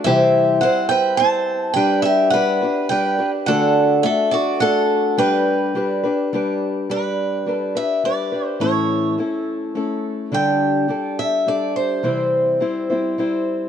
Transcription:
steel-string acoustic guitar
0.04 C3 E3 G3 C4 E4 G4 C5 E5
0.61 G3 C4 E4 C5 F#5
0.89 B4 G5
1.17 G3 C4 E4 C5 A5
1.22 C5
1.74 G3 D4 G4 B4 G5
2.02 G4 E5
2.30 G3 D4 B4 F#5
2.35 G4 B4
2.62 D4 G4 B4
2.89 G3 D4 G4 B4 G5
3.19 D4 G4 B4
3.46 D3 A3 D4 F#4 A4 F#5
4.03 A3 D4 F#4 A4 E5
4.31 D4 F#4 A4 D5
4.60 A3 D4 F#4 A4 F#5
5.17 G3 D4 G4 B4 G5
5.75 G3 D4 G4 B4
6.03 D4 G4 B4
6.33 G3 D4 G4 B4
6.90 G3 D4 G4 B4
7.46 G3 D4 G4 B4
7.54 A4
7.75 D4 G4 B4 E5
8.04 G3 D4 G4 B4 D5
8.32 D4 G4 B4
8.46 C5
8.60 A2 E3 A3 C#4 E4 A4 C#5
9.18 A3 C#4 E4 A4
9.75 A3 C#4 E4 A4
10.32 D3 G3 D4 G4 A4 G5
10.88 G3 D4 G4 A4
11.19 E5
11.46 G3 D4 G4 A4 D5
11.76 C5
12.03 C3 E3 G3 C4 E4 C5
12.60 G3 C4 E4 C5
12.90 G3 C4 E4 C5
13.18 G3 C4 E4 C5

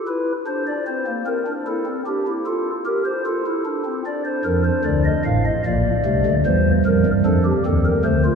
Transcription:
pipe organ
0.07 E4 B4
0.47 D4 C5
0.67 D5
0.87 C4 C5
1.07 A#3
1.26 C4 A#4
1.47 D4
1.67 E4 A4
1.86 C4
2.07 D4 G4
2.27 E4
2.46 F4 A4
2.86 G4 A#4
3.06 C5
3.26 F4 A4
3.46 E4
3.66 D4
3.85 C4
4.06 D4 D5
4.25 C5
4.45 F2 F3 A#4
4.65 C5
4.84 D2 D3 D5
5.05 D#5
5.25 A1 A2 F5
5.45 D#5
5.66 A#1 A#2 A#3 D5
6.05 C2 C3 A3
6.26 D2 D3
6.46 E2 E3 G3 C5
6.86 F2 F3 A#4
7.06 G2 G3
7.25 F2 F3 D4 A4
7.45 G4
7.66 D#2 D#3 C4 A4
7.86 A#4
8.05 D2 D3 A3 C5
8.25 F4

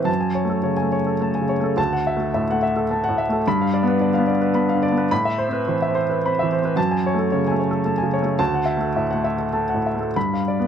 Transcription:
upright piano
Already playing: A2 E3 C4 B4 C5 E5 B5
0.04 F#2 A5
0.21 G#5
0.35 C#5
0.45 A3
0.50 A4
0.63 C#3 C#5
0.77 G#5
0.82 A3
0.92 C#5
1.07 A4
1.21 A3 A5
1.35 G#5
1.41 C#3
1.49 C#5
1.60 A3 A4
1.77 D2 A5
1.93 F#5
2.07 E5
2.17 A3 A4
2.34 A2 E5
2.50 A3 F#5
2.63 E5
2.76 A4
2.91 A3 A5
3.04 F#5
3.09 A2
3.18 E5
3.29 A3 A4
3.47 G2 B5
3.61 F5
3.74 D5
3.83 B3
3.88 B4
4.01 D3 D5
4.14 F5
4.18 B3
4.27 D5
4.42 B4
4.54 B3 B5
4.69 F5
4.74 D3
4.83 D5
4.92 B3
4.98 B4
5.11 A2 B5
5.25 E5
5.38 C5
5.48 C4
5.53 B4
5.68 E3 C5
5.82 E5
5.88 C4
5.95 C5
6.10 B4
6.26 C4 B5
6.39 E3 E5
6.53 C5
6.62 C4 B4
6.76 F#2 A5
6.91 G#5
7.06 C#5
7.14 A3
7.19 A4
7.32 C#3 C#5
7.48 A3 G#5
7.60 C#5
7.71 A4
7.85 A3 A5
7.98 G#5
8.03 C#3
8.13 C#5
8.22 A3 A4
8.39 D2 A5
8.54 F#5
8.66 E5
8.77 A3 A4
8.96 A2 E5
9.11 A3 F#5
9.24 E5
9.38 A4
9.53 A3 A5
9.69 F#5
9.74 A2
9.86 E5
9.95 A3
10.01 A4
10.16 G2 B5
10.33 F5
10.48 D5
10.60 B3

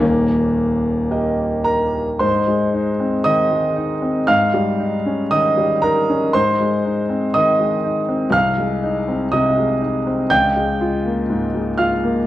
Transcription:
grand piano
0.00 D#1 D#2 A#3
1.11 G4 A#4 D#5
1.64 A#4 A#5
2.19 G#2 C5 C6
2.47 G#3
2.74 D#4
3.00 C4
3.24 D#3 D#5 D#6
3.51 G#3
3.77 D#4
4.02 C4
4.27 G#2 F5 F6
4.54 G3
4.79 D#4
5.06 C#4
5.31 D#3 D#5 D#6
5.57 G3
5.82 D#4 A#4 A#5
6.09 C#4
6.33 G#2 C5 C6
6.60 G#3
6.85 D#4
7.09 C4
7.34 D#3 D#5 D#6
7.60 G#3
7.84 D#4
8.09 C4
8.30 C2 F5 F6
8.58 G#3
8.83 D#4
9.08 C4
9.32 C3 D#5 D#6
9.57 G#3
9.82 D#4
10.07 C4
10.30 C#2 G5 G6
10.57 G#3
10.81 F4
11.05 A#3
11.29 G#2
11.54 G#3
11.77 F4 F5 F6
12.03 A#3

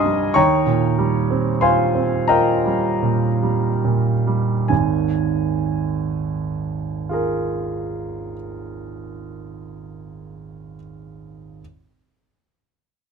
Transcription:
grand piano
Already playing: C2 G2 G3 C4 D#4 D#5 F5 G#5 A#5 C6 C#6 D#6 F6
0.06 G3
0.34 D#2 C#5 G5 A#5 C#6
0.66 A#2
0.99 G3
1.31 C4
1.61 F4 C5 F5 G#5 C6
1.95 C4
2.28 F4 A#4 D#5 G5 A#5
2.66 G3
3.03 A#2
3.43 G3
3.85 A#2
4.27 G3
4.68 G#1 D#2 G#5
7.09 F4 G#4
7.13 A#4

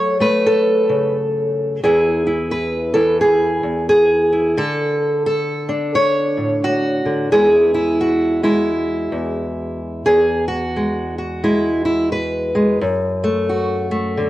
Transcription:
steel-string acoustic guitar
Already playing: F#3 A3 A4 C#5
0.20 A3 B4
0.46 A4
0.89 C#3
1.83 E2 E3 E4 G#4
2.27 E4
2.51 B4
2.94 E3 A4
3.21 G#4
3.63 E2
3.89 G#4
4.32 E4
4.57 D3 A4
5.26 A4
5.69 D4
5.95 C#5
6.37 A2
6.64 F#4
7.05 D3
7.32 E2 G#3 E4 G#4
7.74 E4
8.01 F#4
8.43 G#3 E4
9.12 E2
10.06 E2 G#4
10.48 F#4
10.76 G#3
11.18 F#4
11.44 G#3 E4
11.85 E4
12.12 B4
12.55 G#3
12.81 F#2
13.24 A3
13.49 F#4
13.91 A3
14.17 D3

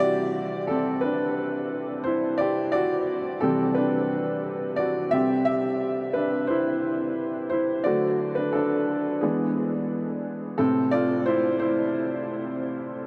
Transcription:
upright piano
Already playing: C3 E3 G3 G4 E5
0.00 F#4 D5
0.67 C4 A4
1.01 D4 B4
2.04 E4 C5
2.38 G4 D5
2.72 F#4 D5
3.41 C3 E3 G3 C4 A4
3.75 D4 B4
4.76 F#4 D5
5.11 C3 G3 C4 G4 E5
5.45 G4 E5
6.13 D4 B4
6.47 E4 C5
7.50 E4 C5
7.84 D3 F#3 A3 F#4 D5
8.35 D4 B4
8.53 D4 A4
9.21 E3 G#3 B3 D4 G#4
10.58 A2 C3 C4 A4
10.91 F4 D5
11.26 E4 C5
11.59 E4 C5

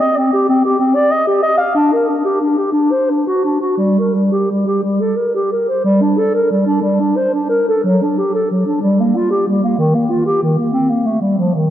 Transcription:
clarinet
0.01 D#5
0.17 C4
0.33 G4
0.49 C4
0.65 G4
0.79 C4
0.95 D5
1.11 D#5
1.27 G4
1.43 D#5
1.58 F5
1.75 D4
1.93 A#4
2.08 D4
2.25 G4
2.41 D4
2.58 G4
2.72 D4
2.91 C5
3.10 D4
3.27 F#4
3.44 D4
3.61 F#4
3.77 G3
3.99 A#4
4.14 G3
4.32 G4
4.50 G3
4.66 G4
4.83 G3
5.01 A4
5.16 A#4
5.35 G4
5.52 A#4
5.69 C5
5.84 G3
6.02 D4
6.18 A4
6.35 A#4
6.50 G3
6.66 D4
6.82 G3
7.00 D4
7.16 C5
7.33 D4
7.49 A#4
7.69 A4
7.84 F#3
8.03 D4
8.18 G4
8.35 A4
8.51 F#3
8.66 D4
8.81 G3
9.00 A#3
9.16 F4
9.31 G4
9.47 G3
9.63 A#3
9.78 D#3
9.95 A#3
10.10 F4
10.26 G4
10.43 D#3
10.58 A#3
10.73 C4
10.90 A#3
11.05 A3
11.21 G3
11.38 F3
11.54 D#3

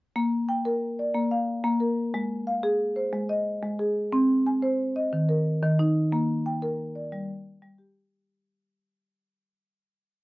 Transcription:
marimba
0.16 A#3
0.49 G5
0.65 A#4
0.99 D5
1.14 A#3
1.31 F5
1.64 A#3
1.80 A#4
2.14 G#3
2.47 F5
2.63 G#4
2.96 C5
3.13 G#3
3.29 D#5
3.63 G#3
3.79 G#4
4.12 C4
4.47 G#5
4.62 C5
4.96 D#5
5.13 D#3
5.29 A#4
5.63 D#3
5.79 D#4
6.12 A#3
6.46 G5
6.62 A#4
6.95 D5
7.12 G3
7.62 G3
7.78 G4

